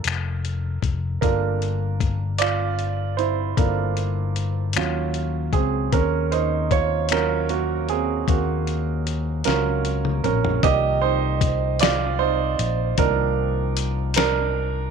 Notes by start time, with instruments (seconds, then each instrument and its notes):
Already playing: grand piano A#3 D4 F4 A4 A#4
0.04 fingered electric bass F1, finger snap, closed hi-hat
0.45 closed hi-hat
0.82 fingered electric bass F1, kick, closed hi-hat
1.21 fingered electric bass G1, grand piano A#3 D4 F4 A4 A#4, kick, closed hi-hat
1.62 closed hi-hat
2.00 kick, closed hi-hat
2.38 grand piano F4 D5, finger snap, closed hi-hat
2.79 closed hi-hat
3.17 grand piano E4 C5, closed hi-hat
3.57 fingered electric bass G1, grand piano A#3 D4 F4 A4 A#4, kick, closed hi-hat
3.97 closed hi-hat
4.36 closed hi-hat
4.73 fingered electric bass D#2, grand piano F#3 C#4 F4, finger snap, closed hi-hat
5.14 closed hi-hat
5.53 fingered electric bass C#2, grand piano C4 G#4, kick, closed hi-hat
5.92 fingered electric bass D#2, grand piano C#4 A#4, kick, closed hi-hat
6.32 grand piano D#4 C5, closed hi-hat
6.71 grand piano F4 C#5, kick, closed hi-hat
7.09 grand piano F#3 C#4 F4 A#4, finger snap, closed hi-hat
7.49 grand piano A#3 F#4, closed hi-hat
7.88 grand piano C4 G#4, closed hi-hat
8.28 fingered electric bass D#2, grand piano A#3 F#4, kick, closed hi-hat
8.67 closed hi-hat
9.07 closed hi-hat
9.44 fingered electric bass C#2, grand piano F#3 C#4 F4 A#4, snare, closed hi-hat
9.85 closed hi-hat
10.05 mid tom
10.24 fingered electric bass A#1, grand piano C#4 A#4, closed hi-hat, mid tom
10.45 floor tom
10.63 fingered electric bass C2, grand piano D#3 F3 A#3 G4 D5 D#5, kick, closed hi-hat
11.02 grand piano D#4 C5
11.41 kick, closed hi-hat
11.79 grand piano F4 D5, snare, closed hi-hat
12.19 grand piano D#4 C5
12.59 fingered electric bass A#1, closed hi-hat
12.98 fingered electric bass C2, grand piano D#3 F3 A#3 D4 A#4, kick, closed hi-hat
13.77 closed hi-hat
14.14 grand piano D4 A#4, snare, closed hi-hat